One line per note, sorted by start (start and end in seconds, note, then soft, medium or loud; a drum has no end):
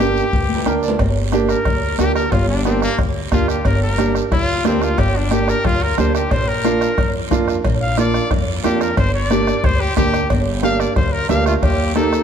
0.00 0.20 G1 loud
0.00 0.23 A#3 medium
0.00 0.23 D4 medium
0.00 0.23 G4 medium
0.00 0.83 G4 medium
0.00 bombo rim medium
0.00 short guiro medium
0.17 short guiro medium
0.33 0.60 D2 medium
0.33 bombo low medium
0.33 high conga soft
0.33 low timbale medium
0.33 long guiro medium
0.49 high conga medium
0.55 low timbale medium
0.66 0.93 D2 medium
0.66 0.89 A#3 medium
0.66 0.89 D4 medium
0.66 0.90 A#4 medium
0.66 0.82 G5 medium
0.66 bombo rim medium
0.66 high conga medium
0.66 short guiro medium
0.83 0.98 D5 medium
0.83 short guiro medium
0.88 low timbale loud
0.99 1.53 G1 loud
0.99 bombo low medium
0.99 bombo rim medium
0.99 cowbell loud
0.99 long guiro medium
1.32 1.56 A#3 medium
1.32 1.56 D4 medium
1.32 1.56 G4 loud
1.32 bombo rim medium
1.32 cowbell medium
1.32 high conga medium
1.32 short guiro medium
1.49 1.98 A#4 medium
1.49 bombo rim medium
1.49 short guiro medium
1.65 1.92 D2 medium
1.65 bombo low medium
1.65 bombo rim medium
1.65 cowbell medium
1.65 high conga soft
1.65 low conga medium
1.65 long guiro medium
1.98 2.26 D2 medium
1.98 2.22 A#3 medium
1.98 2.22 D4 medium
1.98 2.22 G4 medium
1.98 2.15 G4 loud
1.98 bombo rim medium
1.98 cowbell medium
1.98 high conga medium
1.98 low timbale medium
1.98 short guiro medium
2.15 2.33 A#4 medium
2.15 bombo rim medium
2.15 short guiro medium
2.32 2.85 G1 loud
2.32 2.48 F4 medium
2.32 bombo low medium
2.32 bombo rim medium
2.32 cowbell loud
2.32 high conga soft
2.32 low conga medium
2.32 long guiro medium
2.49 2.65 D4 medium
2.65 2.89 A#3 medium
2.65 2.82 C4 medium
2.65 2.89 D4 medium
2.65 2.89 G4 medium
2.65 bombo rim medium
2.65 cowbell medium
2.65 high conga medium
2.65 short guiro medium
2.82 2.99 A#3 loud
2.82 bombo rim medium
2.82 short guiro medium
2.98 3.25 D2 medium
2.98 bombo low medium
2.98 bombo rim medium
2.98 cowbell medium
2.98 high conga soft
2.98 low conga medium
2.98 long guiro medium
3.31 3.59 D2 medium
3.31 3.55 A#3 medium
3.31 3.55 D4 medium
3.31 3.48 F4 loud
3.31 3.55 G4 medium
3.31 bombo low medium
3.31 bombo rim medium
3.31 cowbell medium
3.31 high conga medium
3.31 short guiro medium
3.48 3.65 G4 medium
3.48 bombo rim medium
3.48 short guiro medium
3.65 4.18 G1 loud
3.65 3.82 A#4 medium
3.65 bombo low medium
3.65 bombo rim medium
3.65 cowbell loud
3.65 high conga soft
3.65 long guiro medium
3.83 4.15 A#4 medium
3.98 4.21 A#3 medium
3.98 4.22 D4 medium
3.98 4.22 G4 medium
3.98 bombo rim medium
3.98 cowbell medium
3.98 high conga medium
3.98 short guiro medium
4.15 bombo rim medium
4.15 short guiro medium
4.32 4.58 D2 medium
4.32 4.64 F4 loud
4.32 bombo low medium
4.32 bombo rim medium
4.32 cowbell medium
4.32 high conga soft
4.32 low conga medium
4.32 long guiro medium
4.64 4.92 D2 loud
4.64 4.88 A#3 medium
4.64 4.84 C4 medium
4.64 4.88 D4 medium
4.64 4.88 G4 medium
4.64 bombo rim medium
4.64 cowbell medium
4.64 high conga medium
4.64 low timbale medium
4.64 short guiro medium
4.82 5.01 F4 medium
4.82 bombo rim medium
4.82 short guiro medium
4.98 5.52 G1 loud
4.98 5.18 G4 medium
4.98 bombo low medium
4.98 bombo rim medium
4.98 cowbell loud
4.98 high conga soft
4.98 low conga medium
4.98 long guiro medium
5.16 5.33 D4 medium
5.31 5.55 A#3 medium
5.31 5.55 D4 medium
5.31 5.55 G4 medium
5.31 5.51 G4 medium
5.31 bombo rim medium
5.31 cowbell medium
5.31 high conga medium
5.31 short guiro medium
5.48 5.67 A#4 medium
5.48 bombo rim medium
5.48 short guiro medium
5.65 5.91 D2 medium
5.65 5.84 F4 medium
5.65 bombo low medium
5.65 bombo rim medium
5.65 cowbell medium
5.65 high conga soft
5.65 low conga medium
5.65 long guiro medium
5.83 5.98 A#4 medium
5.97 6.25 D2 medium
5.97 6.21 A#3 medium
5.97 6.21 D4 medium
5.97 6.22 G4 medium
5.97 6.15 C5 medium
5.97 bombo rim medium
5.97 cowbell medium
5.97 high conga medium
5.97 low conga medium
5.97 short guiro medium
6.15 6.33 G4 medium
6.15 bombo rim medium
6.15 short guiro medium
6.31 6.85 A#1 loud
6.31 6.50 C5 medium
6.31 bombo low medium
6.31 bombo rim medium
6.31 cowbell loud
6.31 high conga soft
6.31 long guiro medium
6.48 7.13 A#4 medium
6.64 6.88 A#3 medium
6.64 6.88 D4 medium
6.64 6.88 F4 medium
6.64 bombo rim medium
6.64 cowbell medium
6.64 high conga medium
6.64 short guiro medium
6.81 bombo rim medium
6.81 short guiro medium
6.98 7.25 F2 medium
6.98 bombo low medium
6.98 bombo rim medium
6.98 cowbell medium
6.98 high conga soft
6.98 low conga medium
6.98 long guiro medium
7.31 7.58 F2 medium
7.31 7.54 A#3 medium
7.31 7.54 D4 medium
7.31 7.55 F4 loud
7.31 bombo low medium
7.31 bombo rim medium
7.31 cowbell medium
7.31 high conga medium
7.31 low conga medium
7.31 short guiro medium
7.48 bombo rim medium
7.48 short guiro medium
7.64 8.18 A#1 loud
7.64 bombo low medium
7.64 bombo rim medium
7.64 cowbell loud
7.64 high conga soft
7.64 low conga medium
7.64 long guiro medium
7.82 8.00 F5 medium
7.97 8.21 A#3 medium
7.97 8.21 D4 medium
7.97 8.21 F4 medium
7.97 8.30 D5 loud
7.97 bombo rim medium
7.97 cowbell medium
7.97 high conga medium
7.97 short guiro medium
8.14 bombo rim medium
8.14 short guiro medium
8.31 8.57 F2 medium
8.31 bombo low medium
8.31 bombo rim medium
8.31 cowbell medium
8.31 high conga soft
8.31 low conga medium
8.31 long guiro medium
8.64 8.91 F2 loud
8.64 8.87 A#3 medium
8.64 8.87 D4 medium
8.64 8.88 F4 medium
8.64 8.83 G4 medium
8.64 bombo rim medium
8.64 cowbell medium
8.64 high conga medium
8.64 short guiro medium
8.81 8.97 A#4 medium
8.81 bombo rim medium
8.81 short guiro medium
8.97 9.51 G1 loud
8.97 9.14 C5 medium
8.97 bombo low medium
8.97 bombo rim medium
8.97 cowbell loud
8.97 high conga soft
8.97 low conga medium
8.97 long guiro medium
9.14 9.66 D5 medium
9.30 9.53 A#3 medium
9.30 9.54 D4 medium
9.30 9.54 G4 medium
9.30 bombo rim medium
9.30 cowbell medium
9.30 high conga medium
9.30 short guiro medium
9.47 bombo rim medium
9.47 short guiro medium
9.63 9.90 D2 medium
9.63 9.82 C5 loud
9.63 bombo low medium
9.63 bombo rim medium
9.63 cowbell medium
9.63 high conga soft
9.63 low conga medium
9.63 long guiro medium
9.81 9.96 G4 loud
9.96 10.23 D2 loud
9.96 10.20 A#3 medium
9.96 10.20 D4 medium
9.96 10.29 G4 loud
9.96 10.20 G4 medium
9.96 bombo low medium
9.96 bombo rim medium
9.96 cowbell medium
9.96 high conga medium
9.96 short guiro medium
10.14 bombo rim medium
10.14 short guiro medium
10.30 10.83 G1 loud
10.30 bombo low medium
10.30 bombo rim medium
10.30 cowbell loud
10.30 high conga soft
10.30 long guiro medium
10.62 10.86 A#3 medium
10.62 10.86 D4 medium
10.62 10.86 G4 medium
10.62 10.82 F5 loud
10.62 bombo rim medium
10.62 cowbell medium
10.62 high conga medium
10.62 short guiro medium
10.80 10.96 D5 medium
10.80 bombo rim medium
10.80 short guiro medium
10.96 11.23 D2 loud
10.96 11.14 C5 medium
10.96 bombo low medium
10.96 bombo rim medium
10.96 cowbell medium
10.96 high conga soft
10.96 low conga medium
10.96 long guiro medium
11.12 11.29 A#4 medium
11.28 11.56 D2 loud
11.28 11.52 A#3 medium
11.28 11.52 D4 medium
11.28 11.53 G4 medium
11.28 11.46 F5 loud
11.28 bombo rim medium
11.28 cowbell medium
11.28 high conga medium
11.28 low conga medium
11.28 low timbale medium
11.28 short guiro medium
11.46 11.53 A3 medium
11.46 11.54 F4 medium
11.46 bombo rim medium
11.46 short guiro medium
11.62 12.16 D#2 loud
11.62 11.93 A#3 medium
11.62 11.93 G4 medium
11.62 bombo low medium
11.62 bombo rim medium
11.62 cowbell loud
11.62 high conga soft
11.62 low conga medium
11.62 long guiro medium
11.95 12.19 A#3 medium
11.95 12.23 D#4 medium
11.95 12.19 D#4 medium
11.95 12.19 G4 medium
11.95 12.23 A4 medium
11.95 bombo rim medium
11.95 cowbell medium
11.95 high conga medium
11.95 short guiro medium
12.13 bombo rim medium
12.13 short guiro medium